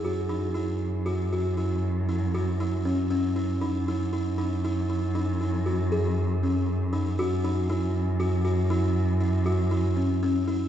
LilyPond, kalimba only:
\new Staff \with { instrumentName = "Kalimba" } { \time 7/4 \key e \lydian \tempo 4 = 118 fis'8 dis'8 e'4 fis'8 fis'8 e'4 e'8 fis'8 e'8 cis'8 cis'8 e'8 | dis'8 e'8 e'8 dis'8 e'8 e'8 dis'8 e'8 fis'8 gis'4 cis'4 dis'8 | fis'8 dis'8 e'4 fis'8 fis'8 e'4 e'8 fis'8 e'8 cis'8 cis'8 e'8 | }